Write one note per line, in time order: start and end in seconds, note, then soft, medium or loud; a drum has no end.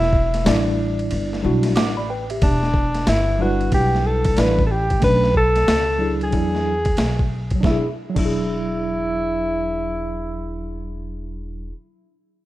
0.00 0.43 E1 loud
0.00 0.75 E4 loud
0.00 snare soft
0.13 kick medium
0.34 snare soft
0.34 ride medium
0.44 1.08 A1 medium
0.44 1.38 G3 medium
0.44 1.39 D4 medium
0.44 1.40 E4 medium
0.44 1.40 D5 medium
0.44 snare loud
0.44 hi-hat pedal medium
0.44 ride medium
0.99 ride soft
1.11 1.43 G1 medium
1.11 ride medium
1.33 snare soft
1.42 1.77 B1 medium
1.42 1.92 G3 medium
1.42 1.93 D4 medium
1.42 1.93 E4 medium
1.42 1.78 F#4 medium
1.63 snare soft
1.63 ride medium
1.76 2.39 A1 medium
1.76 1.96 F#5 medium
1.76 1.96 D6 medium
1.76 snare loud
1.76 hi-hat pedal soft
1.76 ride medium
1.97 2.09 D5 medium
1.97 2.09 B5 medium
2.10 2.29 B4 medium
2.10 2.29 G5 medium
2.30 2.61 G4 medium
2.30 2.61 E5 medium
2.30 ride medium
2.42 3.04 E1 medium
2.42 3.04 D4 medium
2.42 kick loud
2.42 ride medium
2.63 snare soft
2.74 kick medium
2.94 snare soft
2.94 ride medium
3.07 3.69 G1 medium
3.07 3.43 E4 medium
3.07 snare loud
3.07 hi-hat pedal medium
3.07 ride medium
3.38 3.47 F#3 medium
3.38 4.33 D4 medium
3.38 4.33 E4 medium
3.38 3.73 F#4 medium
3.38 4.34 B4 medium
3.45 4.34 G3 medium
3.61 ride soft
3.72 4.34 B1 medium
3.72 4.07 G4 loud
3.72 kick medium
3.72 ride medium
3.95 snare soft
4.06 4.41 A4 medium
4.25 kick medium
4.25 ride medium
4.35 5.00 A1 medium
4.35 4.62 G3 medium
4.35 4.62 D4 soft
4.35 4.63 E4 medium
4.35 4.63 D5 medium
4.35 snare loud
4.35 hi-hat pedal soft
4.35 ride medium
4.39 4.66 B4 medium
4.59 kick medium
4.66 4.73 A4 medium
4.71 5.03 G4 medium
4.90 kick medium
4.90 ride medium
5.00 5.65 B1 medium
5.00 5.27 A3 medium
5.00 5.27 C#4 medium
5.00 5.28 D4 medium
5.00 kick loud
5.00 ride medium
5.04 5.34 B4 loud
5.04 5.29 B4 medium
5.24 snare soft
5.34 6.18 A4 loud
5.34 kick medium
5.56 snare soft
5.56 ride medium
5.67 6.30 C#2 medium
5.67 snare loud
5.67 hi-hat pedal soft
5.67 ride medium
5.98 6.30 F#3 medium
5.98 6.31 D4 medium
5.98 6.32 E4 medium
5.98 6.34 G#4 medium
6.21 7.28 G#4 medium
6.21 ride soft
6.31 6.95 E2 medium
6.31 6.73 F#3 medium
6.31 6.74 D4 soft
6.31 6.74 E4 medium
6.31 kick medium
6.31 ride medium
6.35 6.75 G#4 medium
6.55 snare soft
6.85 kick medium
6.85 ride medium
6.97 7.60 B1 medium
6.97 snare medium
6.97 hi-hat pedal soft
6.97 ride medium
7.19 kick medium
7.50 kick medium
7.50 ride soft
7.55 7.80 F#3 medium
7.61 7.85 E1 medium
7.61 7.83 D4 medium
7.61 kick medium
7.61 snare medium
7.66 7.86 E4 medium
7.71 7.89 G#4 medium
8.09 11.67 F#3 medium
8.15 11.70 E1 medium
8.15 11.70 D4 medium
8.15 11.01 E4 medium
8.15 kick medium
8.15 crash medium
8.20 11.72 E4 medium
8.25 11.75 G#4 medium